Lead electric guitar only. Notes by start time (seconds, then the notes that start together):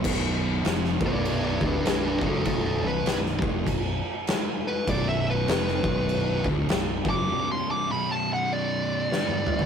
1.06 B4 D5
1.25 B4 D5
1.45 B4 D5
1.66 D4 B4
1.86 D4 B4
2.07 D4 B4
2.27 F#4 A4
2.46 F#4 A4
2.66 F#4 A4
2.87 B4
4.68 B4
4.89 D5
5.09 E5
5.30 B4
7.10 D6
7.52 C6
7.71 D6
7.92 B5
8.11 A5
8.33 F#5
8.53 D5